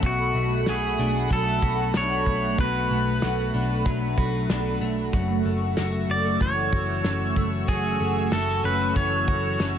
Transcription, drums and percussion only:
0.03 kick loud
0.03 closed hi-hat medium
0.66 snare loud
0.66 closed hi-hat medium
1.31 kick medium
1.31 closed hi-hat medium
1.62 kick medium
1.94 snare loud
1.94 closed hi-hat medium
2.26 kick medium
2.58 kick loud
2.58 closed hi-hat medium
3.22 snare medium
3.22 closed hi-hat medium
3.86 kick medium
3.86 closed hi-hat medium
4.18 kick medium
4.50 snare loud
4.50 closed hi-hat medium
5.13 kick loud
5.13 closed hi-hat medium
5.77 snare loud
5.77 closed hi-hat medium
6.41 kick medium
6.41 closed hi-hat soft
6.73 kick medium
7.04 snare loud
7.04 closed hi-hat medium
7.36 kick medium
7.68 kick loud
7.68 closed hi-hat medium
8.32 snare loud
8.32 closed hi-hat medium
8.96 kick medium
8.96 closed hi-hat medium
9.28 kick loud
9.60 snare loud
9.60 closed hi-hat medium

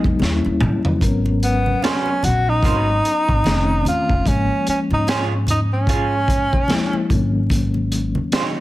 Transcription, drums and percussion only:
0.04 kick medium
0.19 snare medium
0.19 muted conga soft
0.19 high conga medium
0.45 muted conga soft
0.61 mid tom medium
0.61 high conga medium
0.85 floor tom medium
1.01 kick loud
1.01 closed hi-hat medium
1.01 muted conga soft
1.26 muted conga soft
1.43 closed hi-hat medium
1.66 high conga medium
1.82 snare loud
1.82 closed hi-hat medium
1.82 muted conga soft
2.06 muted conga soft
2.23 closed hi-hat medium
2.23 high conga medium
2.23 low conga medium
2.63 kick medium
2.63 closed hi-hat medium
2.63 muted conga soft
2.63 low conga medium
3.05 closed hi-hat medium
3.29 kick medium
3.44 snare loud
3.44 closed hi-hat medium
3.44 muted conga soft
3.44 high conga medium
3.85 closed hi-hat medium
3.85 high conga medium
3.85 low conga medium
4.09 kick medium
4.26 kick loud
4.26 closed hi-hat medium
4.67 closed hi-hat medium
4.91 high conga medium
5.07 snare loud
5.07 closed hi-hat medium
5.07 muted conga soft
5.47 closed hi-hat medium
5.47 high conga medium
5.47 low conga medium
5.87 kick medium
5.87 closed hi-hat medium
5.87 low conga medium
6.28 kick medium
6.28 closed hi-hat medium
6.53 kick medium
6.68 snare loud
6.68 closed hi-hat medium
6.68 high conga medium
6.93 muted conga soft
7.10 kick medium
7.10 closed hi-hat soft
7.10 high conga medium
7.10 low conga medium
7.50 kick loud
7.50 closed hi-hat medium
7.50 muted conga soft
7.74 muted conga soft
7.92 closed hi-hat medium
8.15 high conga medium
8.32 snare loud
8.32 closed hi-hat medium
8.32 muted conga soft

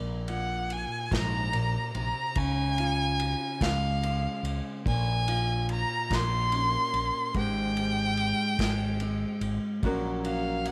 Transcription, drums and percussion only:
0.28 ride soft
0.70 ride soft
1.11 kick medium
1.11 snare medium
1.11 ride medium
1.53 ride soft
1.95 ride soft
2.35 kick medium
2.35 ride medium
2.78 ride medium
3.20 ride medium
3.61 kick medium
3.61 snare loud
3.61 ride medium
4.03 ride medium
4.45 ride medium
4.86 kick medium
4.86 ride medium
5.28 ride medium
5.69 ride medium
6.10 kick medium
6.10 snare medium
6.10 ride medium
6.52 ride soft
6.94 ride soft
7.34 kick medium
7.34 ride medium
7.77 ride soft
8.17 ride soft
8.59 kick medium
8.59 snare loud
8.59 ride medium
9.00 ride soft
9.41 ride soft
9.83 kick medium
9.83 ride medium
10.25 ride medium
10.65 ride soft

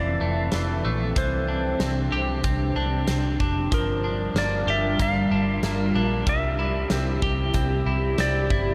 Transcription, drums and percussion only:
0.52 snare loud
0.52 closed hi-hat medium
1.16 kick loud
1.16 closed hi-hat medium
1.80 snare loud
1.80 closed hi-hat medium
2.44 kick medium
2.44 closed hi-hat medium
3.07 snare medium
3.07 closed hi-hat medium
3.40 kick medium
3.72 kick loud
3.72 closed hi-hat medium
4.36 snare loud
4.36 closed hi-hat medium
4.99 kick medium
4.99 closed hi-hat medium
5.63 snare medium
5.63 closed hi-hat medium
6.27 kick loud
6.27 closed hi-hat medium
6.90 snare loud
6.90 closed hi-hat medium
7.22 kick medium
7.54 kick medium
7.54 closed hi-hat medium
8.18 snare medium
8.18 closed hi-hat medium
8.50 kick medium

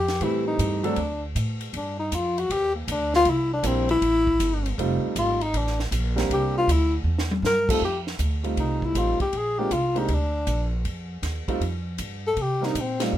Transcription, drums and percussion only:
0.08 snare soft
0.08 ride soft
0.21 kick soft
0.21 ride medium
0.59 kick soft
0.59 hi-hat pedal medium
0.59 ride medium
0.84 ride soft
0.96 kick soft
0.96 ride medium
1.36 kick soft
1.36 hi-hat pedal medium
1.36 ride medium
1.61 ride medium
1.74 kick soft
1.74 ride medium
2.12 kick soft
2.12 hi-hat pedal medium
2.12 ride medium
2.38 ride soft
2.50 kick soft
2.50 ride medium
2.88 kick soft
2.88 hi-hat pedal medium
2.88 ride medium
3.14 snare medium
3.25 kick soft
3.25 ride medium
3.64 kick soft
3.64 hi-hat pedal medium
3.64 ride medium
3.89 ride medium
4.02 kick soft
4.02 ride medium
4.27 kick medium
4.40 kick soft
4.40 hi-hat pedal medium
4.40 ride medium
4.66 ride medium
4.78 kick soft
4.78 ride medium
5.16 kick soft
5.16 hi-hat pedal medium
5.16 ride medium
5.41 ride medium
5.54 kick soft
5.54 ride medium
5.67 snare soft
5.80 snare soft
5.92 kick soft
5.92 hi-hat pedal medium
5.92 ride medium
6.18 snare medium
6.18 ride medium
6.30 kick soft
6.30 ride medium
6.68 kick soft
6.68 hi-hat pedal medium
6.68 ride medium
7.18 snare medium
7.31 mid tom medium
7.44 snare medium
7.44 hi-hat pedal medium
7.69 kick medium
7.69 crash medium
7.82 kick soft
8.07 snare soft
8.19 kick soft
8.19 hi-hat pedal medium
8.19 ride medium
8.44 ride soft
8.57 kick soft
8.57 ride medium
8.82 kick medium
8.95 kick soft
8.95 hi-hat pedal medium
8.95 ride medium
9.20 kick medium
9.20 ride soft
9.33 kick soft
9.33 ride medium
9.71 kick soft
9.71 hi-hat pedal soft
9.71 ride medium
9.96 ride soft
10.08 kick soft
10.08 ride medium
10.47 kick soft
10.47 hi-hat pedal medium
10.47 ride medium
10.85 kick soft
10.85 ride medium
11.23 kick soft
11.23 snare soft
11.23 hi-hat pedal medium
11.23 ride medium
11.48 kick medium
11.48 ride soft
11.61 kick soft
11.61 ride medium
11.98 kick soft
11.98 hi-hat pedal medium
11.98 ride medium
12.37 kick soft
12.37 ride medium
12.63 snare soft
12.75 kick soft
12.75 hi-hat pedal medium
12.75 ride medium
13.00 snare medium
13.00 ride medium
13.13 kick soft

